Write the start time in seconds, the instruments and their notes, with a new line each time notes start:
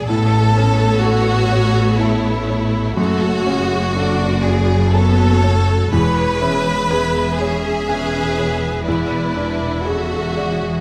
Already playing: felt piano G#4 D5
0.07 double bass section A1, cello section A2, felt piano A2, viola section B3 A4, violin section A4 C#5
0.57 felt piano C#4
1.04 violin section F#4, felt piano A4
1.51 felt piano C#5
2.00 violin section E4, felt piano A5
2.48 felt piano C#5
2.96 double bass section F#1, felt piano F#2, cello section F#2, viola section A3 A4, violin section F#4 C#5
3.46 felt piano C#4, viola section G#4
3.96 viola section D4 F#4, felt piano A4, violin section D5
4.43 viola section C#3, violin section G#4
4.92 viola section B3 F#4, violin section A4 C#5, felt piano A5
5.42 viola section A3, felt piano C#5
5.91 double bass section E1, cello section E2, felt piano E2, viola section G#3 G#4, violin section B4 C#5
6.41 felt piano C#4, violin section E5
6.88 viola section B3 G#4, felt piano G#4, violin section E5
7.39 viola section C#4, violin section G#4, felt piano C#5
7.87 viola section C#4 B4, felt piano G#5
8.38 viola section B3, felt piano C#5
8.85 felt piano E2, viola section B3 B4, violin section E4 D5
9.36 felt piano D4, viola section D4
9.86 viola section C#3 A4, violin section F#4 E5, felt piano G#4
10.37 viola section G#4, felt piano D5